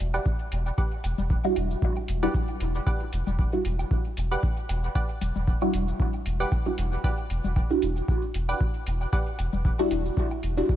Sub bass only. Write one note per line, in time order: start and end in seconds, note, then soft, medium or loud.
0.00 0.19 E1 medium
0.52 0.71 E1 loud
1.04 1.14 E1 loud
1.18 1.36 E1 medium
1.56 1.75 E1 loud
2.08 2.28 E1 medium
2.61 2.80 E1 loud
3.13 3.23 E1 medium
3.27 3.45 E1 medium
3.65 3.84 E1 loud
4.17 4.36 E1 medium
4.69 4.88 E1 loud
5.21 5.32 E1 loud
5.36 5.54 E1 medium
5.74 5.93 E1 loud
6.26 6.45 E1 medium
6.78 6.97 E1 loud
7.30 7.40 E1 loud
7.44 7.62 E1 medium
7.82 8.02 E1 loud
8.34 8.54 E1 medium
8.87 9.06 E1 loud
9.39 9.49 E1 loud
9.53 9.71 E1 medium
9.91 10.10 E1 loud
10.43 10.62 E1 medium